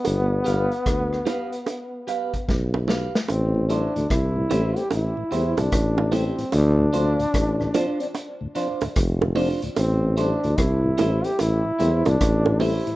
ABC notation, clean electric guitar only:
X:1
M:4/4
L:1/8
Q:"Swing 16ths" 1/4=74
K:Am
V:1 name="Clean electric guitar"
z [GBf] z [GBf] z [GBf] z [GBf] | z [EGc] z [EGc] z [EGc] z [EGc] | z [DFc] z [DFc] z [DFc] z [DFc] | z [EGc] z [EGc] z [EGc] z [EGc] |]